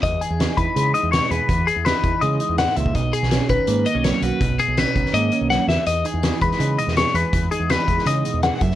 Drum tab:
HH |x-x-x-x-x-x-x-x-|x-x-x-x-x-x-x-x-|x-x-x-x-x-x-x-x-|x-x-x-x-x-x-----|
SD |----o-------oo--|----o-------oo--|---oo-------o---|----o--o----o-o-|
BD |o-----o---------|o-----o--------o|o-----o---------|o-----o---------|

HH |x-x-x-x-x-x-x-x-|x-x-x-x-x-x-x-x-|
SD |----o--o---ooo--|----o--o----o--o|
BD |------o---------|o-----o-------o-|